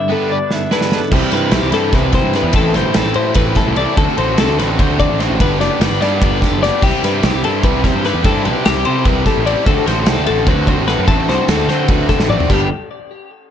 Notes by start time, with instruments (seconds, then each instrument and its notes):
Already playing: clean electric guitar G2 D3 E4 E5
0.09 overdriven electric guitar B3 D4 G4 B4, clean electric guitar B3 A4
0.30 clean electric guitar D4 D5
0.51 clean electric guitar B3 E5, snare
0.71 overdriven electric guitar B3 D4 G4 B4, clean electric guitar E4 B4, snare
0.81 snare
0.92 clean electric guitar B3 A4, snare
1.11 picked electric bass C2, overdriven electric guitar C3 E3 G3 C4 E4, clean electric guitar G4, kick, crash
1.32 picked electric bass G2, overdriven electric guitar G3 C4 E4, clean electric guitar B4, snare, ride
1.51 picked electric bass B1, overdriven electric guitar E3 G3 C4 E4, clean electric guitar G4, snare, ride
1.62 picked electric bass C2
1.71 picked electric bass G2, overdriven electric guitar G3 C4 E4, clean electric guitar A4, snare, ride
1.92 picked electric bass C2, overdriven electric guitar C3 E3 G3 C4 E4, clean electric guitar B4, kick, snare, ride
2.12 overdriven electric guitar G3 C4 E4, clean electric guitar C5, kick, snare, ride
2.23 picked electric bass G2
2.33 overdriven electric guitar E3 G3 C4 E4, clean electric guitar B4, snare, ride
2.43 picked electric bass E2
2.53 picked electric bass A1, overdriven electric guitar A2 E3 A3 C4 E4, clean electric guitar A4, kick, ride
2.74 picked electric bass G1, overdriven electric guitar A3 C4 E4, clean electric guitar C5, snare, ride
2.94 picked electric bass A1, overdriven electric guitar E3 A3 C4 E4, clean electric guitar A4, snare, ride
3.05 picked electric bass A1
3.14 picked electric bass A2, overdriven electric guitar A3 C4 E4, clean electric guitar C5, ride
3.34 picked electric bass A1, overdriven electric guitar A2 E3 A3 C4 E4, clean electric guitar B4, kick, snare, ride
3.55 overdriven electric guitar C4 E4, clean electric guitar A4, kick, snare, ride
3.59 overdriven electric guitar A3
3.67 picked electric bass C2
3.76 overdriven electric guitar E3 A3 C4 E4, clean electric guitar D5, ride
3.97 picked electric bass D2, overdriven electric guitar D3 A3 C4 F#4, clean electric guitar A4, kick, ride
4.18 picked electric bass A1, overdriven electric guitar A3 C4 F#4, clean electric guitar C5, ride
4.38 picked electric bass C2, overdriven electric guitar D3 A3 C4 F#4, clean electric guitar A4, snare, ride
4.50 picked electric bass D2
4.58 picked electric bass A1, overdriven electric guitar A3 C4 F#4, clean electric guitar B4, snare, ride
4.78 picked electric bass D2, overdriven electric guitar D3 A3 C4 F#4, clean electric guitar C5, kick, ride
4.99 overdriven electric guitar A3 C4 F#4, clean electric guitar D5, kick, ride
5.10 picked electric bass A1
5.19 overdriven electric guitar D3 A3 C4 F#4, clean electric guitar C5, snare, ride
5.30 picked electric bass A1
5.40 picked electric bass G1, overdriven electric guitar G2 D3 G3 B3 D4 G4, clean electric guitar B4, kick, ride
5.59 picked electric bass F#1, overdriven electric guitar G3 B3 D4 G4, clean electric guitar D5, snare, ride
5.80 picked electric bass G1, overdriven electric guitar G3 B3 D4 G4, clean electric guitar B4, snare, ride
5.91 picked electric bass G1
6.01 picked electric bass G2, overdriven electric guitar G3 B3 D4 G4, clean electric guitar D5, snare, ride
6.22 picked electric bass G1, overdriven electric guitar G2 D3 G3 B3 D4 G4, clean electric guitar B4, kick, ride
6.41 overdriven electric guitar G3 B3 D4 G4, clean electric guitar A4, kick, snare, ride
6.52 picked electric bass F#1
6.62 overdriven electric guitar G3 B3 D4 G4, clean electric guitar D5, snare, ride
6.82 picked electric bass C2, overdriven electric guitar C3 G3 C4 E4 G4, clean electric guitar G4, kick, crash
7.03 picked electric bass G2, overdriven electric guitar C4 E4 G4, clean electric guitar B4, snare, ride
7.23 picked electric bass B1, overdriven electric guitar G3 C4 E4 G4, clean electric guitar G4, snare, ride
7.34 picked electric bass C2
7.43 picked electric bass G2, overdriven electric guitar C4 E4 G4, clean electric guitar A4, ride
7.62 picked electric bass C2, overdriven electric guitar C3 G3 C4 E4 G4, clean electric guitar B4, kick, ride
7.84 overdriven electric guitar C4 E4 G4, clean electric guitar C5, kick, snare, ride
7.94 picked electric bass G2
8.04 overdriven electric guitar G3 C4 E4 G4, clean electric guitar B4, snare, ride
8.14 picked electric bass E2
8.24 picked electric bass G2, overdriven electric guitar C3 G3 C4 E4 G4, clean electric guitar A4, kick, ride
8.45 picked electric bass B1, overdriven electric guitar C4 E4 G4, clean electric guitar B4, ride
8.65 picked electric bass C2, overdriven electric guitar G3 C4 E4 G4, clean electric guitar G4, snare, ride
8.76 picked electric bass C2
8.85 picked electric bass C3, overdriven electric guitar C4 E4 G4, clean electric guitar C5, ride
9.05 picked electric bass C2, overdriven electric guitar C3 G3 C4 E4 G4, clean electric guitar B4, kick, ride
9.26 overdriven electric guitar C4 E4 G4, clean electric guitar A4, kick, snare, ride
9.37 picked electric bass A1
9.45 overdriven electric guitar G3 C4 E4 G4, clean electric guitar D5, ride
9.66 picked electric bass D2, overdriven electric guitar D3 A3 C4 F#4, clean electric guitar A4, kick, ride
9.86 picked electric bass A1, overdriven electric guitar A3 C4 F#4, clean electric guitar C5, snare, ride
10.06 picked electric bass C2, overdriven electric guitar D3 A3 C4 F#4, clean electric guitar A4, snare, ride
10.18 picked electric bass D2
10.26 picked electric bass A1, overdriven electric guitar A3 C4 F#4, clean electric guitar A4, ride
10.47 picked electric bass D2, overdriven electric guitar D3 A3 C4 F#4, clean electric guitar B4, kick, ride
10.67 overdriven electric guitar C4 F#4, clean electric guitar C5, kick, ride
10.71 overdriven electric guitar A3
10.78 picked electric bass A1
10.88 overdriven electric guitar D3 A3 C4 F#4, clean electric guitar B4, snare, ride
10.99 picked electric bass F#2
11.08 picked electric bass A1, overdriven electric guitar D3 A3 C4 F#4, clean electric guitar A4, kick, ride
11.28 picked electric bass C2, overdriven electric guitar A3 C4 F#4, clean electric guitar C5, snare, ride
11.48 picked electric bass D2, overdriven electric guitar D3 A3 C4 F#4, clean electric guitar A4, snare, ride
11.58 picked electric bass D2
11.68 picked electric bass D3, overdriven electric guitar A3 C4 F#4, clean electric guitar C5, snare, ride
11.88 picked electric bass D2, overdriven electric guitar D3 A3 C4 F#4, clean electric guitar B4, kick, ride
12.09 overdriven electric guitar A3 C4 F#4, clean electric guitar A4, kick, snare, ride
12.19 picked electric bass A1, snare
12.30 overdriven electric guitar D3 A3 C4 F#4, clean electric guitar D5, mid tom
12.40 floor tom
12.50 picked electric bass G1, overdriven electric guitar G2 D3 G3 B3 D4, clean electric guitar G4, kick, crash